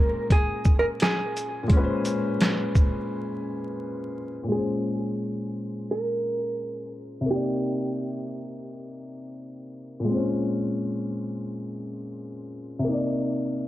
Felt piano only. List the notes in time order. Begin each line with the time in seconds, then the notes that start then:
Already playing: A#2 G#3 C#4 C5
1.63 A#2
1.68 G#3
1.73 C#4
1.77 B4
1.84 C5
4.43 A#2
4.48 G#3
4.53 C#4
4.58 C5
7.21 C3
7.26 A#3
7.30 D#4
7.35 D5
10.00 A#2
10.04 G#3
10.09 C4
10.13 C#4 C5
12.79 C3
12.84 A#3
12.89 D#4
12.93 D5